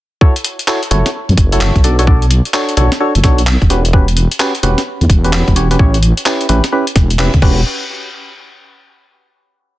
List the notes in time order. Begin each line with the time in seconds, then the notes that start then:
0.21 E4 F#4 A4 C#5, kick
0.36 closed hi-hat
0.44 closed hi-hat
0.59 closed hi-hat
0.68 E4 F#4 A4 C#5, clap
0.83 closed hi-hat
0.91 F#1 E4 F#4 A4 C#5, closed hi-hat
1.06 snare, closed hi-hat
1.29 F#2, closed hi-hat
1.37 F#1, kick, closed hi-hat
1.52 E4 F#4 A4 C#5, closed hi-hat
1.61 clap
1.76 B1, kick, closed hi-hat
1.84 D4 F#4 A4 D5, closed hi-hat
1.99 D4 F#4 A4 C#5, closed hi-hat
2.07 D4 F#4 A4 D5, kick
2.22 closed hi-hat
2.31 closed hi-hat
2.45 closed hi-hat
2.54 D4 F#4 A4 C#5, clap
2.69 closed hi-hat
2.77 B1 D4 F#4 A4 C#5, closed hi-hat
2.92 snare, closed hi-hat
3.00 D4 F#4 A4 C#5
3.15 F#1, closed hi-hat
3.24 B1 D4 F#4 A4 C#5, kick, snare, closed hi-hat
3.38 closed hi-hat
3.47 clap
3.62 E1, kick, closed hi-hat
3.70 C#4 F#4 G4 B4, snare, closed hi-hat
3.85 closed hi-hat
3.93 C#4 F#4 G4 B4, kick
4.08 closed hi-hat
4.17 closed hi-hat
4.32 closed hi-hat
4.40 C#4 F#4 G4 B4, clap
4.55 closed hi-hat
4.63 E1 C#4 F#4 G4 B4, closed hi-hat
4.78 snare, closed hi-hat
5.01 E2, closed hi-hat
5.10 E1, kick, closed hi-hat
5.24 C#4 F#4 G4 B4, closed hi-hat
5.33 clap
5.48 E1, kick, closed hi-hat
5.56 C#4 F#4 G4 C#5, closed hi-hat
5.71 C#4 F#4 G4 B4, closed hi-hat
5.79 A1 C#4 E4 G4 C#5, kick
5.94 closed hi-hat
6.03 closed hi-hat
6.17 closed hi-hat
6.26 C#4 E4 G4 B4, clap
6.41 closed hi-hat
6.49 A1 C#4 E4 G4 B4, closed hi-hat
6.64 snare, closed hi-hat
6.72 C#4 E4 G4 B4
6.87 closed hi-hat
6.96 E1, kick, snare, closed hi-hat
7.10 closed hi-hat
7.19 C#4 E4 G4 B4, clap
7.34 C#2, kick, closed hi-hat
7.42 E1 C#4 F#4 G4 B4, kick, crash